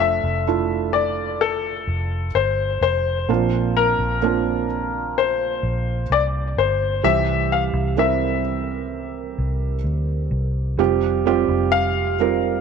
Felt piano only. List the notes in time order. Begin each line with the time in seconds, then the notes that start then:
Already playing: F3 A3 D4 F4
0.47 A3 D4 E4 F4
3.29 A#2 F3 A#3 C4 D4 F4
4.22 A#3 C4 D4 F4
7.03 C3 E3 G3 C4 G4
7.97 G3 C4 E4 A#4
10.79 C3 G3 C4 F4 G4
11.26 G3 C4 F4 G4
12.20 G3 C4 F4 A#4